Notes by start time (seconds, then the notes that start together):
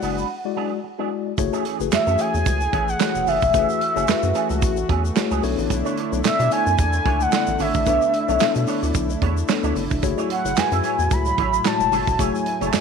Already playing: G#3 E4 F#4 D5 F#5
0.02 F#1 F#3 B3 D4 G#4, open hi-hat, shaker
0.17 F#3 B3 D4 B4, shaker
0.44 G#3 E4 F#4 D5, muted clean electric guitar stroke
0.56 F#3 B3 D4 G#4
0.72 muted clean electric guitar stroke
0.83 muted clean electric guitar stroke
0.98 F#3 G#3 B3 D4 E4 F#4 G#4 D5
1.11 muted clean electric guitar stroke
1.26 muted clean electric guitar stroke
1.38 F#1 E3 A3 E4 F#4 G#4 C#5, muted clean electric guitar stroke, kick, closed hi-hat, shaker
1.53 E3 A3 C#4 G#4, shaker
1.65 E3 A3 C#4 G#4, closed hi-hat
1.80 F#1 A3 E4 F#4 G#4 B4, muted clean electric guitar stroke, shaker
1.91 F#2 A3 E4 F#4 G#4 C#5 E5, muted clean electric guitar stroke, snare, clap, closed hi-hat, shaker
2.07 F#2 E3 A3 C#4 A4, shaker
2.18 E3 A3 C#4 G#4 G#5, closed hi-hat, shaker
2.33 E2, muted clean electric guitar stroke, shaker
2.46 C#2, kick, closed hi-hat, shaker
2.61 muted clean electric guitar stroke, shaker
2.73 A1 E3 A3 C#4 G#4, kick, closed hi-hat
2.88 F#5, muted clean electric guitar stroke, shaker
3.00 A3 E4 F#4 G#4 C#5, muted clean electric guitar stroke, snare, clap, closed hi-hat, shaker
3.15 E1, muted clean electric guitar stroke, shaker
3.27 F#1 E3 A3 C#4 G#4 E5, open hi-hat, shaker
3.42 E1, muted clean electric guitar stroke, kick, shaker
3.53 F#1 E3 A3 C#4 E4 F#4 G#4 B4, kick, closed hi-hat, shaker
3.69 muted clean electric guitar stroke, shaker
3.81 muted clean electric guitar stroke, closed hi-hat
3.96 F#1 E3 A3 C#4 E4 F#4 G#4 C#5, shaker
4.08 F#2 A3 E4 F#4 G#4 B4, muted clean electric guitar stroke, snare, clap, closed hi-hat, shaker
4.23 F#2, muted clean electric guitar stroke, shaker
4.34 E3 A3 C#4 G#4, closed hi-hat, shaker
4.50 C#2 E3 A3 C#4 A4, shaker
4.62 A1, kick, closed hi-hat, shaker
4.77 muted clean electric guitar stroke, shaker
4.89 E2 E3 A3 C#4 G#4, kick, closed hi-hat
5.04 muted clean electric guitar stroke, shaker
5.16 A3 E4 F#4 G#4 C#5, muted clean electric guitar stroke, snare, clap, closed hi-hat, shaker
5.31 C#2 E3 A3 C#4 G#4, shaker
5.43 B1 D3 B3 D4 E4 A4 C#5, muted clean electric guitar stroke, open hi-hat, shaker
5.58 A1, muted clean electric guitar stroke, shaker
5.70 B1, muted clean electric guitar stroke, kick, closed hi-hat, shaker
5.85 D4 E4 A4 C#5, shaker
5.97 D4 E4 A4 C#5, closed hi-hat
6.12 B1 B3 D4 E4 A4 C#5, muted clean electric guitar stroke, shaker
6.24 B2 B3 D4 E4 A4 D5 E5, muted clean electric guitar stroke, snare, clap, closed hi-hat, shaker
6.39 B2 D4 E4 A4 D5, closed hi-hat, shaker
6.51 D4 E4 A4 C#5 G#5, closed hi-hat, shaker
6.66 F#2, muted clean electric guitar stroke, shaker
6.78 E2, kick, closed hi-hat, shaker
6.93 muted clean electric guitar stroke, shaker
7.06 C#2 D4 E4 A4 C#5, kick, closed hi-hat
7.20 F#5, muted clean electric guitar stroke, shaker
7.32 B3 D4 E4 A4 D5, muted clean electric guitar stroke, snare, clap, closed hi-hat, shaker
7.47 A1, muted clean electric guitar stroke, shaker
7.59 G#1 D4 E4 A4 C#5 E5, open hi-hat, shaker
7.74 A1, muted clean electric guitar stroke, kick, shaker
7.86 B1 B3 D4 E4 A4 B4 C#5, kick, closed hi-hat, shaker
8.02 muted clean electric guitar stroke, shaker
8.13 muted clean electric guitar stroke, closed hi-hat
8.28 B1 B3 D4 E4 A4 C#5 E5, shaker
8.39 B2 B3 D4 E4 A4 C#5, muted clean electric guitar stroke, snare, clap, closed hi-hat, shaker
8.55 B2, muted clean electric guitar stroke, closed hi-hat, shaker
8.67 D4 E4 A4 C#5, open hi-hat, shaker
8.82 D2 D4 E4 A4 D5, shaker
8.95 B1, kick, closed hi-hat, shaker
9.10 muted clean electric guitar stroke, shaker
9.22 E2 D4 E4 A4 C#5, kick, closed hi-hat
9.37 muted clean electric guitar stroke, shaker
9.48 B3 D4 E4 A4 C#5, muted clean electric guitar stroke, snare, clap, closed hi-hat, shaker
9.63 D2 D4 E4 A4 C#5, shaker
9.75 F#1, muted clean electric guitar stroke, open hi-hat, shaker
9.90 E1, muted clean electric guitar stroke, kick, shaker
10.03 F#1 A2 F#3 A3 E4 F#4 G#4 C#5, muted clean electric guitar stroke, kick, closed hi-hat, shaker
10.18 A3 E4 G#4 C#5, shaker
10.29 A3 E4 G#4 C#5 F#5, closed hi-hat
10.45 F#1 A3 E4 F#4 G#4 C#5, muted clean electric guitar stroke, closed hi-hat, shaker
10.56 F#2 A3 E4 F#4 G#4 B4 G#5, muted clean electric guitar stroke, snare, clap, closed hi-hat, shaker
10.72 F#2 A3 E4 G#4 E5, closed hi-hat, shaker
10.84 A3 E4 G#4 C#5, closed hi-hat, shaker
10.99 E2, shaker
11.11 C#2 B5, kick, closed hi-hat, shaker
11.25 muted clean electric guitar stroke, shaker
11.38 A1 A3 E4 G#4 C#5, kick, closed hi-hat
11.53 muted clean electric guitar stroke, shaker
11.64 G#3 A3 E4 F#4 C#5 A5, muted clean electric guitar stroke, snare, clap, closed hi-hat, shaker
11.80 E1, muted clean electric guitar stroke, shaker
11.92 F#1 A3 E4 G#4 C#5, open hi-hat, shaker
12.07 E1, muted clean electric guitar stroke, kick, shaker
12.19 F#1 A3 E4 F#4 G#4 C#5 G#5, kick, closed hi-hat, shaker
12.34 muted clean electric guitar stroke, shaker
12.46 muted clean electric guitar stroke, closed hi-hat
12.61 F#1 A3 E4 F#4 G#4 C#5, closed hi-hat, shaker
12.66 A5
12.73 F#2 A3 E4 F#4 G#4 C#5 G#5, muted clean electric guitar stroke, snare, clap, closed hi-hat, shaker